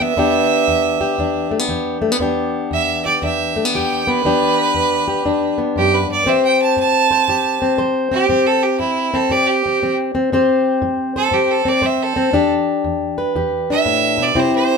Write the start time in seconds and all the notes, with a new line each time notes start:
Already playing: E2 D4 G4
0.01 B3 E5
0.17 E2 B3 D4 G4
0.68 E2
1.01 G4
1.18 E2 D4
1.51 A3
1.59 B3
1.68 E2 G4
2.02 A3
2.12 B3
2.20 E2 B3 D4 G4
2.71 E2 E5
3.05 G4 D5
3.22 E2 D4 E5
3.56 A3
3.65 B3
3.74 E2 G4 G5
4.07 B3 B4
4.24 E2 B3 D4 G4
4.74 E2
5.08 G4
5.25 E2 D4
5.58 B3
5.76 F#2 G4
5.94 B4
6.08 G2 D5
6.26 A2 C4 G4 C5 E5
6.45 G5
6.62 A5
6.77 A2 A5
7.11 C5
7.28 A2 G4
7.62 C4
7.78 A2 C5
8.12 C4 G4
8.29 A2 C4
8.46 A4
8.63 G4
8.79 A2 E4
9.14 C4 A4
9.30 A2 G4 D5
9.47 G4
9.66 C4
9.82 A2 C4
10.15 C4
10.32 A2 C4 G4 C5
10.82 A2
11.16 A4 C5
11.31 A2 C4 G4
11.51 A4
11.65 C4 D5
11.82 A2 C5
11.86 E5
12.03 A4
12.16 C4
12.33 E2 D4 G4
12.84 E2
13.18 B4
13.36 E2 G4
13.70 D4 E5
13.85 A2
14.18 B2
14.23 D5
14.35 C3 C4 E4 G4
14.39 C5
14.55 C5